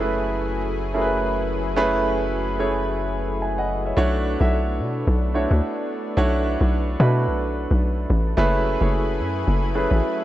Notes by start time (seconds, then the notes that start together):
Already playing: F#1 F#3 A3 E4 G#4 B4
0.00 A3 C#4 E4 G#4 B4
0.94 A3 C#4 E4 G#4 A#4
1.01 B4
1.76 A3 C#4 E4 G#4 B4
2.59 A3 C#4 E4 G#4 C#5
3.42 E5 G#5
3.58 D#5 F#5
3.86 C#5 E5
3.97 B1 A3 B3 D4 E4 F#4 C#5
4.40 B1 A3 D4 E4 F#4 E5
4.80 B2
5.07 B1
5.34 A3 D4 E4 F#4 C#5
5.51 D2
6.17 B1 A3 D4 E4 F#4 C#5
6.61 B1
6.99 B2 A3 D4 E4 F#4 B4
7.27 B1
7.71 B1
8.10 A1
8.37 F#1 F#3 A3 C#4 E4 G#4 B4
8.81 F#1 A3 C#4 E4 G#4 C#5
9.20 F#2
9.48 F#1
9.75 A3 C#4 E4 G#4 B4
9.91 A1